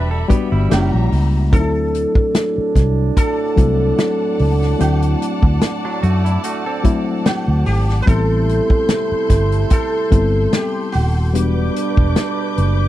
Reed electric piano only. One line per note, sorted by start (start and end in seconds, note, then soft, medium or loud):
0.00 0.28 G3 medium
0.00 0.29 B3 medium
0.00 0.30 D4 medium
0.00 0.30 F#4 medium
0.28 0.69 G3 loud
0.28 0.71 B3 medium
0.28 0.71 D4 medium
0.28 0.71 F#4 loud
0.70 1.37 G3 medium
0.70 1.37 A#3 medium
0.70 1.38 C#4 medium
0.70 0.78 D4 medium
0.78 1.41 E4 medium
1.52 2.73 F#3 medium
1.52 2.73 A3 medium
1.52 2.73 C4 medium
1.52 1.60 D#4 medium
1.60 2.77 E4 medium
3.56 4.47 F#3 medium
3.56 4.48 A3 medium
3.56 4.48 C4 medium
3.56 4.48 E4 medium
4.79 5.99 F#3 medium
4.79 6.00 A3 medium
4.79 6.00 C4 medium
4.79 6.00 E4 medium
6.84 7.75 F#3 medium
6.84 7.75 A3 medium
6.84 7.76 C4 medium
6.84 7.75 E4 loud
8.06 9.27 G3 medium
8.06 9.27 B3 medium
8.06 9.27 C4 medium
8.06 9.28 E4 medium
10.11 11.02 G3 medium
10.11 11.02 B3 medium
10.11 11.02 C4 medium
10.11 11.03 E4 medium
11.34 12.54 G3 medium
11.34 12.55 B3 medium
11.34 12.55 D4 medium
11.34 12.55 F#4 medium